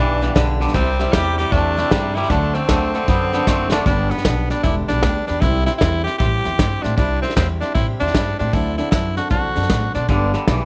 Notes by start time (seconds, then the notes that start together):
Already playing: B1 G2 E3 G3 B3 D4 D5 G5 B5
0.00 G4
0.21 G2 E3 G3 B3 D4 G4 D5 F#5 G5 B5, snare
0.35 B1 G2 D3 G3 B3 D4 G4 D5 B5, kick, snare, hi-hat pedal
0.60 G2 D3 G3 B3 D4 G4 D5 G5 A5 B5, snare
0.68 snare
0.74 C2 C3 G3 C4 E4 G4 E5 G5 C6, kick, snare
1.00 C3 G3 C4 E4 G4 E5 G5 D6, snare
1.13 E2 C3 G3 C4 E4 G4 E5 G5 D6, kick, snare, hi-hat pedal
1.38 C3 G3 C4 E4 G4 E5 G5 D6, snare
1.52 E2 C3 G3 A3 C4 D4 E4 G4 E5 G5 A5, kick, snare
1.77 C3 A3 C4 E4 G4 E5 G5 B5, snare
1.90 G2 C3 G3 C4 E4 G4 E5 C6, kick, snare, hi-hat pedal
2.15 C3 G3 C4 E4 G4 E5 G5 C6, snare
2.23 snare
2.29 D2 D3 F#3 A3 C4 D4 A4 D5 F#5 A5, kick, snare
2.54 D3 A3 C4 D4 A4 D5 F#5 A5, snare
2.69 D2 D3 F#3 A3 C4 D4 A4 D5 F#5 A5, kick, snare, hi-hat pedal
2.94 D3 A3 C4 D4 A4 D5 F#5 A5, snare
3.08 F#2 D3 F#3 B3 C4 D4 A4 D5 F#5 B5, kick, snare
3.33 D3 B3 C4 D4 A4 D5 F#5 A5, snare
3.47 F#1 D3 F#3 A3 C4 D4 A4 D5 F#5 C6, kick, snare, hi-hat pedal
3.72 D3 A3 C4 D4 A4 D5 F#5 A5, snare
3.86 G1 G2 D3 G3 B3 D4 G4 D5 G5 B5, kick, snare
4.11 G3 B3 D4 G4 D5 G5 B5, snare
4.18 snare
4.25 B1 G3 B3 D4 G4 D5 G5 A5, kick, snare, hi-hat pedal
4.50 G3 B3 D4 G4 D5 G5 B5, snare
4.63 E1 G2 D3 G3 B3 D4 E4 G4 D5 G5 D6, kick, snare
4.88 B1 G3 B3 D4 G4 D5 G5 B5, snare
5.03 D2 G3 B3 D4 G4 D5 G5 B5, kick, snare, hi-hat pedal
5.27 E2 G3 B3 D4 G4 D5 G5 B5, snare
5.40 C2 C3 G3 C4 E4 E5 G5 C6, kick, snare
5.44 G4
5.66 C4 E4 G4 E5 G5 C6, snare
5.78 E2 G3 C4 E4 E5 C6, kick, snare, hi-hat pedal
5.82 E4 G4
6.04 E4 G4 E5 G5 C6, snare
6.08 C4
6.18 A1 C3 G3 C4 E4 G4 E5 G5 C6, kick, snare
6.44 E2 C4 E4 G4 E5 G5 C6, snare
6.58 G2 G3 C4 E4 G4 E5 G5 C6, kick, snare, hi-hat pedal
6.82 A2 C4 D4 E4 G4 E5 G5 C6, snare
6.96 C2 C3 G3 C4 D4 E4 G4 E5 G5 B5, kick, snare
7.22 C4 E4 G4 E5 G5 C6, snare
7.30 snare
7.36 E2 G3 C4 E4 G4 E5 G5 B5, kick, snare, hi-hat pedal
7.61 C4 D4 E4 G4 E5 G5 C6, snare
7.74 A1 C3 G3 C4 E4 G4 E5 G5 C6, kick, snare
8.00 E2 C4 D4 E4 G4 E5 G5 C6, snare
8.07 snare
8.14 G2 G3 C4 E4 G4 E5 B5, kick, snare, hi-hat pedal
8.39 A2 C4 D4 E4 G4 E5 G5 C6, snare
8.53 D2 D3 F#3 C4 D4 E4 A4 D5 F#5 A5, kick, snare
8.77 C4 D4 E4 A4 D5 F#5 A5, snare
8.91 F#2 F#3 D4 E4 D5 A5, kick, snare, hi-hat pedal
8.95 A4
9.17 C4 D4 F#4 A4 D5 F#5 A5, snare
9.30 C2 D3 F#3 C4 D4 F#4 A4 D5 F#5 A5, kick, snare
9.56 F#2 C4 D4 A4 D5 F#5 A5, snare
9.63 snare
9.70 A2 F#3 C4 D4 A4 D5 F#5 A5, kick, snare, hi-hat pedal
9.94 B2 C4 D4 A4 D5 F#5 C6, snare
10.08 G1 G2 D3 G3 B3 D4 G4 D5 G5 B5, kick, snare
10.33 G2 D3 G3 B3 D4 G4 D5 G5 B5, snare
10.47 B1 G2 E3 G3 B3 D4 G4 D5 G5 D6, kick, snare, hi-hat pedal